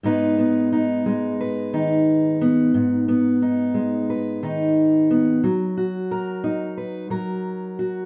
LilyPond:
\new Staff \with { instrumentName = "Steel-string acoustic guitar" } { \time 4/4 \key gis \minor \tempo 4 = 89 << { <gis b dis' b'>8 b8 dis'4 b'8 dis'4 b8~ | b8 b8 dis'4 b'8 dis'4 b8 | r8 fis'8 ais'4 b'8 ais'4 fis'8 | } \\ { gis,4. gis4 dis4. | gis,4. gis4 dis4. | fis4. dis'4 fis4. | } >> }